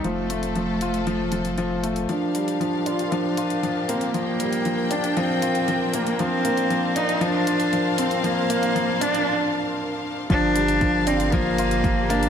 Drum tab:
HH |x-xxx-xxx-xxx-xx|x-xxx-xxx-xxx-xx|x-xxx-xxx-xxx-xx|x-xxx-xxx-xxx-xx|
BD |----------------|----------------|----------------|----------------|

HH |x-xxx-xx--------|x-xxx-xxx-xxx-xx|
BD |----------------|o---o---o---o---|